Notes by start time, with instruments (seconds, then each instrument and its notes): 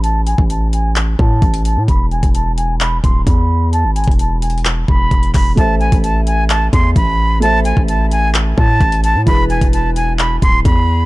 Already playing: 808-style bass A1
0.03 flute A5, closed hi-hat
0.27 flute G#5, closed hi-hat
0.38 808-style bass A1, kick
0.50 flute A5, closed hi-hat
0.73 flute G#5, closed hi-hat
0.96 clap, closed hi-hat
1.19 808-style bass A2, flute A5, kick
1.42 808-style bass A1, kick, closed hi-hat
1.54 closed hi-hat
1.65 flute A5, closed hi-hat
1.77 808-style bass A2
1.88 808-style bass E1, flute B5, kick, closed hi-hat
2.11 flute G#5, closed hi-hat
2.23 808-style bass E1, kick, closed hi-hat
2.34 flute A5, closed hi-hat
2.57 flute G#5, closed hi-hat
2.80 flute B5, clap, closed hi-hat
3.04 808-style bass D1, flute C6, kick, closed hi-hat
3.27 808-style bass E2, flute B5, kick, closed hi-hat
3.73 flute A5, closed hi-hat
3.84 808-style bass G#1
3.96 flute G#5, closed hi-hat
4.04 808-style bass E1, kick, closed hi-hat
4.11 closed hi-hat
4.19 flute A5, closed hi-hat
4.42 flute G#5, closed hi-hat
4.50 closed hi-hat
4.58 closed hi-hat
4.65 clap, closed hi-hat
4.88 808-style bass E1, flute B5, kick
5.11 808-style bass E1, kick, closed hi-hat
5.23 closed hi-hat
5.34 808-style bass E1, flute B5, kick, clap, open hi-hat
5.56 808-style bass A1, grand piano A3 A4 C5, flute A5, kick, closed hi-hat
5.60 grand piano E5
5.80 flute G#5, closed hi-hat
5.92 808-style bass A1, kick, closed hi-hat
6.03 flute A5, closed hi-hat
6.27 flute G#5, closed hi-hat
6.50 flute A5, clap, closed hi-hat
6.73 808-style bass E2, flute C6, kick, closed hi-hat
6.96 808-style bass A1, flute B5, kick, closed hi-hat
7.40 grand piano A3 A4 C5, flute A5, closed hi-hat
7.44 grand piano E5
7.65 flute G#5, closed hi-hat
7.77 808-style bass A1, kick
7.88 flute A5, closed hi-hat
8.11 flute G#5, closed hi-hat
8.34 clap, closed hi-hat
8.57 808-style bass A2, flute A5, kick
8.81 808-style bass A1, kick, closed hi-hat
8.92 closed hi-hat
9.04 flute A5, closed hi-hat
9.15 808-style bass A2
9.26 808-style bass E1, grand piano E3 E4 G#4, flute B5, kick, closed hi-hat
9.30 grand piano B4
9.50 flute G#5, closed hi-hat
9.61 808-style bass E1, kick, closed hi-hat
9.73 flute A5, closed hi-hat
9.96 flute G#5, closed hi-hat
10.19 flute B5, clap, closed hi-hat
10.42 808-style bass D1, flute C6, kick, closed hi-hat
10.65 808-style bass E2, flute B5, kick, closed hi-hat